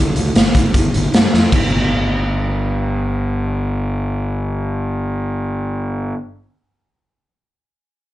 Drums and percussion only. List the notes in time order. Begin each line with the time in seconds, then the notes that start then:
0.16 closed hi-hat
0.35 snare, closed hi-hat
0.55 kick, closed hi-hat
0.74 kick, closed hi-hat
0.94 closed hi-hat
1.14 snare, closed hi-hat
1.34 snare
1.52 kick, crash